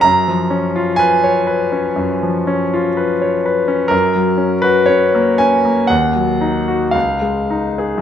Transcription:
\new Staff \with { instrumentName = "Grand piano" } { \time 4/4 \key cis \mixolydian \tempo 4 = 60 << { ais''4 gis''2~ gis''8 r8 | ais'8. b'16 cis''8 gis''8 fis''4 eis''4 | } \\ { fis,16 eis16 cis'16 eis'16 b'16 cis''16 b'16 cis'16 fis,16 eis16 cis'16 eis'16 b'16 cis''16 b'16 cis'16 | fis,16 fis16 cis'16 fis'16 cis'16 ais16 cis'16 ais16 dis,16 fis16 dis'16 fis'16 cis,16 gis16 dis'16 gis'16 | } >> }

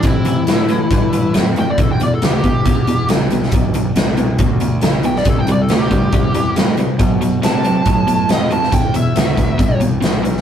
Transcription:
<<
  \new Staff \with { instrumentName = "Lead electric guitar" } { \time 4/4 \key e \minor \tempo 4 = 138 e'2. r8 g''16 d''16 | a'16 g''16 d''16 a'16 g'2 r4 | r2. r8 g''16 d''16 | a'16 g''16 d''16 a'16 g'2 r4 |
r4 a''2 dis''8 a''8 | g''8 e''2 r4. | }
  \new Staff \with { instrumentName = "Overdriven electric guitar" } { \clef bass \time 4/4 \key e \minor <a, e>8 <a, e>8 <a, fis>8 <a, e>8 <a, e>8 <a, e>8 <a, fis>8 <a, e>8 | <e, b,>8 <e, b,>8 <e, cis>8 <e, b,>8 <e, b,>8 <e, b,>8 <e, cis>8 <e, b,>8 | <e, b,>8 <e, b,>8 <e, cis>8 <e, b,>8 <e, b,>8 <e, b,>8 <e, cis>8 <e, b,>8 | <c g>8 <c g>8 <c a>8 <c g>8 <c g>8 <c g>8 <c a>8 <c g>8 |
<b, fis>8 <b, fis>8 <b, gis>8 <b, fis>8 <b, fis>8 <b, fis>8 <b, gis>8 <b, fis>8 | <e, b,>8 <e, b,>8 <e, cis>8 <e, b,>8 <e, b,>8 <e, b,>8 <e, cis>8 <e, b,>8 | }
  \new Staff \with { instrumentName = "Fingered electric bass" } { \clef bass \time 4/4 \key e \minor c4 a,4 g,4 f,4 | e,4 d,8 r8 e,4 c,4 | b,,4 c,4 d,4 b,,4 | c,4 d,4 e,4 g,8 r8 |
b,4 c4 a,4 f,4 | e,4 d,4 c,4 b,,4 | }
  \new DrumStaff \with { instrumentName = "Drums" } \drummode { \time 4/4 <hh bd>8 hh8 <hh sn>8 hh8 <hh bd>8 hh8 <hh sn>8 hh8 | <hh bd>8 hh8 <hh sn>8 <hh bd>8 <hh bd>8 hh8 <hh sn>8 hh16 sn16 | <hh bd>8 hh8 <hh sn>8 hh8 <hh bd>8 hh8 <hh sn>8 hh16 sn16 | <hh bd>8 hh8 <hh sn>8 <hh bd>8 <hh bd>8 hh8 <hh sn>8 hh8 |
<hh bd>8 hh8 <hh sn>8 hh8 <hh bd>8 hh8 <hh sn>8 hh16 sn16 | <hh bd>8 hh8 <hh sn>8 <hh bd>8 <hh bd>8 hh8 <hh sn>8 hh16 sn16 | }
>>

